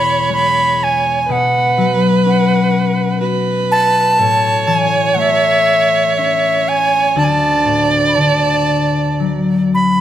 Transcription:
Already playing: harp E2 B2 E3, viola C#5, flute B5
0.29 harp G#3, flute B5
0.84 flute G#5
1.28 harp B2, viola B4
1.32 flute F#5
1.78 harp F#3
2.26 harp C#4, flute F#5
3.20 harp F#4, viola B4
3.72 flute A5
4.18 harp A2, viola C#5
4.67 harp E3, flute G#5
5.14 harp A3, flute F#5
5.19 flute E5
6.16 harp C#4, flute E5
6.69 flute G#5
7.16 harp D2, viola D5, flute A5
7.24 flute G#5
7.29 flute A5
7.65 harp A2
8.08 flute B5
8.16 harp D3, flute A5
9.20 harp F#3
9.75 flute B5

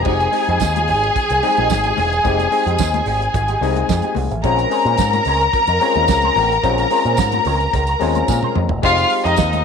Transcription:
0.04 picked electric bass F1, clav G#3 C4 D#4 G4, clean electric guitar G#3 D#4 G4, violin section G#4 G#5, kick, crash, muted conga
0.20 muted clean electric guitar stroke, closed hi-hat
0.32 clav G#3 C4 D#4 G#4, clean electric guitar G#3 D#4 G4, open hi-hat
0.47 picked electric bass F2, clean electric guitar G#3 D#4 G4, closed hi-hat
0.60 picked electric bass D#2, kick, snare, closed hi-hat, tambourine, muted conga
0.75 muted clean electric guitar stroke, closed hi-hat, muted conga, high conga
0.88 picked electric bass G#1, clean electric guitar G#3 D#4 G4, open hi-hat
1.03 muted clean electric guitar stroke, closed hi-hat
1.16 muted clean electric guitar stroke, kick, closed hi-hat, muted conga, low conga
1.30 picked electric bass C2, muted clean electric guitar stroke, closed hi-hat, muted conga
1.43 clav G3 C4 D#4 G#4, clean electric guitar G#3 D#4 G4, open hi-hat
1.48 clav G#3
1.57 picked electric bass A#1, clean electric guitar G#3 D#4 G4, closed hi-hat, high conga
1.70 picked electric bass G#1, muted clean electric guitar stroke, kick, snare, closed hi-hat, tambourine
1.84 clean electric guitar G#3 D#4 G4, closed hi-hat, muted conga, high conga
1.97 picked electric bass E1, muted clean electric guitar stroke, open hi-hat, high conga, low conga
2.13 muted clean electric guitar stroke, closed hi-hat
2.24 picked electric bass F1, clav G#3 C4 D#4 G4, clean electric guitar G#3 D#4 G4, kick, closed hi-hat
2.39 muted clean electric guitar stroke, closed hi-hat, muted conga
2.51 clav G#3 C4 D#4 G#4, clean electric guitar G#3 D#4 G4, open hi-hat
2.66 picked electric bass F2, clean electric guitar G#3 D#4 G4, closed hi-hat
2.78 picked electric bass D#2, kick, snare, closed hi-hat, tambourine, muted conga
2.94 muted clean electric guitar stroke, closed hi-hat, muted conga, high conga
3.06 picked electric bass G#1, clean electric guitar G#3 D#4 G4, open hi-hat
3.22 muted clean electric guitar stroke, closed hi-hat
3.34 picked electric bass G#1, muted clean electric guitar stroke, kick, closed hi-hat, muted conga, low conga
3.48 clean electric guitar G#3 D#4 G4, closed hi-hat, muted conga
3.61 picked electric bass C2, clav G3 C4 D#4 G#4, clean electric guitar G#3 D#4 G4, open hi-hat
3.68 clav G#3
3.76 muted clean electric guitar stroke, closed hi-hat, high conga
3.88 picked electric bass F2, muted clean electric guitar stroke, kick, snare, closed hi-hat, tambourine, muted conga
4.02 clean electric guitar G#3 D#4 G4, closed hi-hat, muted conga, high conga
4.15 picked electric bass C2, muted clean electric guitar stroke, open hi-hat, high conga, low conga
4.31 picked electric bass A1, muted clean electric guitar stroke, closed hi-hat
4.42 picked electric bass A#1, clav G#3 C4 C#4 F4, clean electric guitar C#4 G#4 C5, violin section A#4 A#5, kick, closed hi-hat, muted conga
4.58 muted clean electric guitar stroke, closed hi-hat, muted conga
4.70 clav G#3 C4 C#4 G#4, clean electric guitar C#4 G#4 C5, open hi-hat
4.85 picked electric bass A#2, clean electric guitar C#4 G#4 C5, closed hi-hat
4.98 picked electric bass G#2, kick, snare, closed hi-hat, tambourine, muted conga
5.13 muted clean electric guitar stroke, closed hi-hat, muted conga, high conga
5.25 picked electric bass C#2, clean electric guitar C#4 G#4 C5, open hi-hat
5.41 muted clean electric guitar stroke, closed hi-hat
5.53 kick, closed hi-hat, low conga
5.67 picked electric bass F2, muted clean electric guitar stroke, closed hi-hat, muted conga
5.80 clav G#3 C4 C#4 F4, clean electric guitar C#4 G#4 C5, open hi-hat
5.95 picked electric bass D#2, muted clean electric guitar stroke, closed hi-hat, high conga
6.08 picked electric bass C#2, muted clean electric guitar stroke, kick, snare, closed hi-hat, tambourine, muted conga
6.21 clean electric guitar C5, closed hi-hat, muted conga, high conga
6.25 clean electric guitar C#4 G#4
6.36 picked electric bass A1, muted clean electric guitar stroke, open hi-hat, high conga, low conga
6.52 muted clean electric guitar stroke, closed hi-hat
6.63 picked electric bass A#1, clav G#3 C4 C#4 F4, clean electric guitar C#4 G#4 C5, kick, closed hi-hat, muted conga
6.78 muted clean electric guitar stroke, closed hi-hat
6.90 clav G#3 C4 C#4 F4, clean electric guitar C#4 G#4 C5, open hi-hat
7.05 picked electric bass A#2, clean electric guitar C#4 G#4 C5, closed hi-hat
7.17 picked electric bass G#2, kick, snare, closed hi-hat, tambourine
7.32 muted clean electric guitar stroke, closed hi-hat, muted conga, high conga
7.45 picked electric bass C#2, clean electric guitar C#4 G#4 C5, open hi-hat, low conga
7.61 muted clean electric guitar stroke, closed hi-hat
7.73 picked electric bass C#2, muted clean electric guitar stroke, kick, closed hi-hat, muted conga, low conga
7.87 muted clean electric guitar stroke, closed hi-hat
8.00 picked electric bass D#2, clav G#3 C4 C#4 F4, clean electric guitar C#4 G#4 C5, open hi-hat
8.15 clean electric guitar C#4 G#4 C5, closed hi-hat, high conga
8.28 picked electric bass A#2, muted clean electric guitar stroke, kick, snare, tambourine, muted conga
8.43 clean electric guitar C#4 G#4 C5, high tom, high conga
8.56 picked electric bass F2, muted clean electric guitar stroke, mid tom, high conga, low conga
8.69 picked electric bass E1, muted clean electric guitar stroke, floor tom
8.82 picked electric bass F1, clav G#3 C4 D#4 G4, clean electric guitar G#3 D#4 G4, violin section F4 F5, kick, crash, muted conga
8.98 muted clean electric guitar stroke, closed hi-hat, muted conga
9.10 clean electric guitar G#3 D#4 G4, open hi-hat
9.24 picked electric bass F2, clean electric guitar G#3 D#4 G4, violin section D#4 D#5, closed hi-hat
9.36 picked electric bass D#2, kick, snare, closed hi-hat, tambourine
9.53 muted clean electric guitar stroke, closed hi-hat, muted conga, high conga

